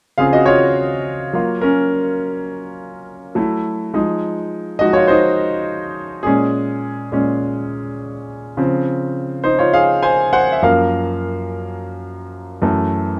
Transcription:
grand piano
0.18 C#3 C4 F4 G#4 F5
0.33 F#4 D#5
0.46 F4 C#5
1.33 F#3 A#3 F4
1.61 C#4 A#4
3.35 F#3 A3 E4
3.94 F3 G#3 D#4
4.79 F3 G#3 D#4 F#4 D#5
4.93 F4 C#5
5.08 D#4 C5
6.23 A#2 G#3 C#4 G#4
7.12 A#2 G#3 C#4
8.57 C#3 F3 C4
9.44 D#4 C5
9.59 F4 C#5
9.73 G#4 F5
10.03 C5 G#5
10.33 C5 F#5
10.52 E5
10.62 F#2 F3 A#3 A#4 F5
12.62 F#2 E3 A3

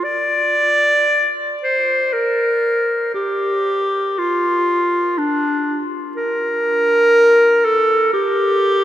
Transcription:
clarinet
0.04 D5
1.63 C5
2.13 A#4
3.14 G4
4.18 F4
5.18 D4
6.17 A#4
7.65 A4
8.13 G4

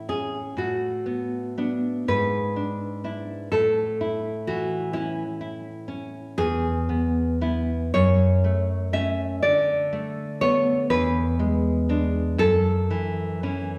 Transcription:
nylon-string guitar
Already playing: A2 E4
0.09 C#4 G#4
0.57 A2 F#4
1.06 B3
1.58 B3 D4
2.08 G#2 B4
2.56 D4
3.04 D4 E4
3.52 A2 A4
4.01 E4
4.47 E3 F#4
4.93 C#4 E4
5.41 E4
5.88 C#4
6.38 E2 G#4
6.89 B3
7.41 B3 E4
7.94 F#2 C#5
8.44 A3
8.93 A3 C#4 E5
9.43 D3 D5
9.93 A3
10.41 A3 B3 C#5
10.90 E2 B4
11.39 G#3
11.89 G#3 D4
12.38 F#2 A4
12.91 E3
13.43 E3 C#4

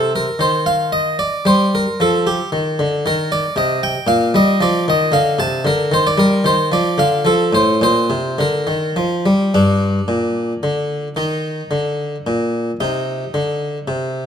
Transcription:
harpsichord
Already playing: C3 A4
0.16 A#4
0.39 D#3 C5
0.66 F5
0.93 D#5
1.19 D5
1.45 G3 C5
1.75 A#4
2.00 F3 A4
2.27 G4
2.52 D#3
2.79 D3
3.06 D#3 A#4
3.32 D5
3.56 C3 D#5
3.83 G5
4.07 A#2 F5
4.34 G3 D#5
4.61 F3 D5
4.88 D#3 D#5
5.12 D3 F5
5.39 C3 A5
5.65 D3 A#4
5.92 D#3 C5
6.07 D5
6.18 G3 A#4
6.44 D#3 C5
6.72 F3 D5
6.98 D3 F5
7.25 F3 A4
7.53 A2 C5
7.81 A#2 C5
8.10 C3
8.39 D3 A#4
8.67 D#3
8.96 F3
9.26 G3
9.54 G2 D4
10.08 A#2
10.63 D3
11.16 D#3 D#4
11.71 D3
12.27 A#2
12.80 C3 D#4
13.34 D3
13.88 C3

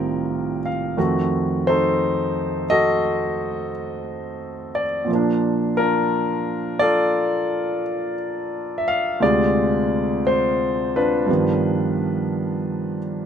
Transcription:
grand piano
Already playing: C2 G2 A2 A#2 C3 D#3 F3 G3 C4 D#4 F4 A#4 D#5 G5
0.66 F5
0.97 F2 D#3 A3 F#4
1.67 D#4 A4 C5
2.70 F#4 A4 D#5
4.75 D5
5.05 A#2 F3
5.12 A#3 D4
5.77 D4 F4 A#4
6.79 F4 A4 D5
8.78 E5
8.88 F5
9.20 D2 C3 G#3 F4 G#4 D5
10.27 C5
10.96 D4 F4 B4
11.26 G2 F3 B3
11.31 D#3

